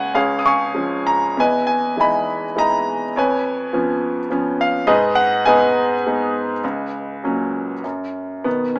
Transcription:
0.00 0.13 C#2 medium
0.00 0.12 C#5 medium
0.00 0.13 F#5 medium
0.00 0.18 G#5 medium
0.14 1.34 C#2 medium
0.14 1.03 G#4 medium
0.14 1.04 C#5 medium
0.14 0.39 F5 medium
0.39 0.46 D#6 medium
0.46 1.34 F5 medium
0.46 1.35 G#5 medium
0.46 1.09 C#6 medium
0.74 1.25 F3 soft
0.74 1.25 G#3 soft
0.74 1.25 C#4 soft
1.07 1.39 A#5 medium
1.37 3.11 E2 medium
1.37 2.25 B4 medium
1.37 1.99 D#5 medium
1.37 1.65 G#5 medium
1.67 1.98 G#5 medium
1.97 2.44 E3 soft
1.97 2.45 G#3 soft
1.97 2.45 D#4 soft
1.97 2.83 G#5 medium
2.01 2.57 D#5 medium
2.01 2.60 B5 medium
2.56 3.03 E3 soft
2.56 3.03 G#3 soft
2.56 3.03 D#4 soft
2.56 3.12 D#5 medium
2.56 3.18 A#5 medium
3.16 4.84 F2 medium
3.16 4.28 B4 medium
3.16 4.27 C#5 medium
3.16 4.28 G#5 medium
3.73 4.19 F3 soft
3.73 4.19 B3 soft
3.73 4.19 C#4 soft
4.30 4.76 F3 soft
4.30 4.76 B3 soft
4.30 4.77 C#4 medium
4.61 4.89 F5 medium
4.87 6.59 G#2 medium
4.87 5.71 G#4 medium
4.87 5.46 B4 medium
4.87 5.17 D#5 medium
5.15 5.43 F#5 loud
5.45 5.93 G#3 soft
5.45 5.93 B3 soft
5.45 5.94 D#4 medium
5.45 7.81 B4 medium
5.45 7.81 D#5 medium
5.45 7.80 G#5 medium
6.06 6.53 G#3 soft
6.06 6.53 B3 soft
6.06 6.53 D#4 medium
6.64 7.81 C#2 medium
7.24 7.73 A#2 soft
7.24 7.72 F#3 soft
7.24 7.73 C#4 medium
7.84 8.44 F#2 soft
8.44 8.79 B2 soft
8.44 8.79 D#3 soft
8.44 8.76 B3 medium
8.76 8.79 F#3 soft
8.76 8.79 C#4 medium

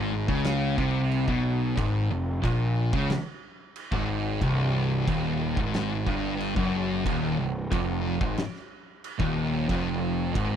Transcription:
0.00 0.25 G#1 loud
0.00 0.28 G#2 loud
0.28 0.75 C#2 loud
0.28 0.77 C#3 loud
0.28 kick loud
0.44 snare loud
0.44 crash medium
0.78 1.25 C2 loud
0.78 1.27 C3 loud
0.78 kick loud
1.12 crash medium
1.28 1.74 B1 loud
1.28 1.77 B2 loud
1.28 kick loud
1.77 2.08 G#1 loud
1.77 2.10 G#2 loud
1.77 kick loud
1.77 crash medium
2.10 2.42 F1 medium
2.10 2.37 F2 medium
2.43 2.90 A#1 loud
2.43 2.92 A#2 loud
2.43 kick loud
2.43 crash medium
2.93 3.09 C#2 loud
2.93 3.09 C#3 loud
2.93 kick loud
3.10 snare loud
3.10 crash medium
3.76 crash medium
3.92 4.38 G#1 medium
3.92 4.41 G#2 loud
3.92 kick loud
4.41 5.04 C1 medium
4.41 5.07 C2 loud
4.41 kick loud
4.41 crash medium
5.08 5.54 D#1 loud
5.08 5.57 D#2 loud
5.08 kick loud
5.08 crash medium
5.57 6.04 G#1 loud
5.57 6.06 G#2 loud
5.57 kick loud
5.74 snare loud
5.74 crash medium
6.07 6.53 G1 medium
6.07 6.56 G2 medium
6.07 kick loud
6.40 crash medium
6.56 7.02 F#1 loud
6.56 7.05 F#2 loud
6.56 kick loud
7.06 7.36 D#1 medium
7.06 7.38 D#2 loud
7.06 kick loud
7.06 crash medium
7.39 7.69 C1 medium
7.39 7.65 C2 medium
7.72 8.18 F1 loud
7.72 8.20 F2 loud
7.72 kick loud
7.72 crash medium
8.21 8.37 G#1 loud
8.21 8.37 G#2 loud
8.21 kick loud
8.37 snare loud
8.37 crash medium
8.55 snare soft
9.04 crash medium
9.20 9.66 D#1 loud
9.20 9.68 D#2 loud
9.20 kick loud
9.69 10.32 F1 medium
9.69 10.35 F2 loud
9.69 kick loud
9.69 crash medium
10.35 10.56 G#1 loud
10.35 10.56 G#2 loud
10.35 kick loud
10.35 crash medium

